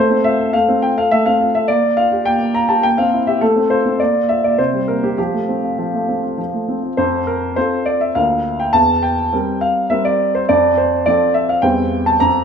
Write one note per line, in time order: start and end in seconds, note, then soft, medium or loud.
0.00 0.52 A3 medium
0.00 0.25 C5 medium
0.10 0.33 C4 soft
0.24 0.48 F4 soft
0.24 0.53 E5 medium
0.40 0.62 A4 soft
0.53 1.10 A3 soft
0.53 0.82 F5 medium
0.69 0.91 C4 soft
0.82 1.05 F4 soft
0.82 0.97 G5 medium
0.97 1.20 A4 soft
0.97 1.11 F5 medium
1.11 1.67 A3 soft
1.11 1.26 E5 medium
1.26 1.49 C4 soft
1.26 1.54 F5 medium
1.40 1.63 F4 soft
1.55 1.69 A4 soft
1.55 1.69 E5 medium
1.68 1.82 A#3 medium
1.68 1.97 D5 medium
1.83 2.06 A#3 soft
1.97 2.20 F4 soft
1.97 2.26 F5 medium
2.12 2.35 G4 soft
2.25 2.39 A#3 medium
2.25 2.54 G5 medium
2.40 2.63 A#3 soft
2.54 2.78 F4 soft
2.54 2.69 A#5 medium
2.69 2.83 G4 soft
2.69 2.83 A5 medium
2.83 3.40 A#3 medium
2.83 2.98 G5 medium
2.98 3.22 C4 soft
2.98 3.27 F5 medium
3.13 3.36 E4 soft
3.27 3.42 G4 soft
3.27 3.42 E5 medium
3.41 3.98 A3 medium
3.41 3.70 A4 medium
3.56 3.79 C4 soft
3.70 3.94 F4 soft
3.70 3.99 C5 medium
3.85 4.00 C4 soft
4.00 4.13 A#3 medium
4.00 4.29 D5 medium
4.15 4.38 A#3 soft
4.29 4.53 F4 soft
4.29 4.44 E5 medium
4.44 4.59 A#3 soft
4.44 4.59 D5 medium
4.58 5.16 C3 soft
4.58 4.88 C5 medium
4.73 4.97 G3 soft
4.88 5.12 A#3 soft
4.88 5.03 A#4 medium
5.03 5.18 C4 soft
5.03 5.16 G4 medium
5.18 5.77 F3 soft
5.18 5.78 G4 medium
5.33 5.57 A3 soft
5.49 5.73 C4 soft
5.64 5.76 F4 soft
5.78 6.36 F3 soft
5.78 6.21 F4 soft
5.94 6.18 A3 soft
6.08 6.32 C4 soft
6.23 6.47 F4 soft
6.38 6.96 F3 soft
6.53 6.77 A3 soft
6.68 6.92 C4 soft
6.83 6.98 F4 soft
6.97 7.55 F2 medium
6.97 7.27 C5 medium
7.27 7.56 A#4 medium
7.56 8.11 C4 soft
7.56 8.12 F4 soft
7.56 8.12 A4 soft
7.56 7.86 C5 medium
7.86 8.00 D5 medium
8.01 8.15 E5 medium
8.15 8.72 D2 medium
8.15 8.70 A#3 soft
8.15 8.70 F4 soft
8.15 8.70 A#4 soft
8.15 8.59 F5 medium
8.60 8.74 G5 medium
8.73 9.30 E2 medium
8.73 9.02 A5 medium
9.03 9.61 G5 medium
9.33 9.86 G3 soft
9.33 9.86 C4 soft
9.33 9.87 A#4 soft
9.61 9.90 F5 medium
9.90 10.44 G3 soft
9.90 10.44 C4 soft
9.90 10.44 A#4 soft
9.90 10.04 E5 medium
10.05 10.34 D5 medium
10.35 10.48 C5 medium
10.49 11.04 F2 medium
10.49 10.77 D5 medium
10.78 11.06 C5 medium
11.06 11.59 F3 soft
11.06 11.60 C4 soft
11.06 11.60 A4 soft
11.06 11.34 D5 medium
11.34 11.48 E5 medium
11.49 11.63 F5 medium
11.62 12.18 E2 medium
11.62 12.16 G3 soft
11.62 12.16 C4 soft
11.62 12.17 C5 soft
11.62 12.06 G5 medium
12.06 12.20 A5 medium
12.20 12.44 F2 medium
12.20 12.44 A#5 medium